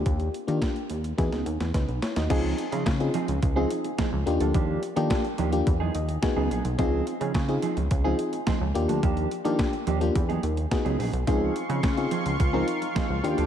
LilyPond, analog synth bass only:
\new Staff \with { instrumentName = "Analog synth bass" } { \clef bass \time 4/4 \key des \major \tempo 4 = 107 ees,8 r16 ees16 r8 ees,8 e,16 des,16 dis,16 e,16 des,16 b,,16 r16 dis,16 | des,8 r16 des16 des8 r16 des,16 des,8 r8. des,16 ees,16 d,16 | ees,8 r16 ees16 r8 ees,8 e,8 dis,8 r16 des,16 bes,,16 b,,16 | des,8 r16 des16 des8 r16 des,16 des,8 r8. des,16 ees,16 d,16 |
ees,8 r16 ees16 r8 ees,8 e,8 dis,8 r16 des,16 bes,,16 b,,16 | des,8 r16 des16 des8 r16 des,16 des,8 r8. des,16 ees,16 d,16 | }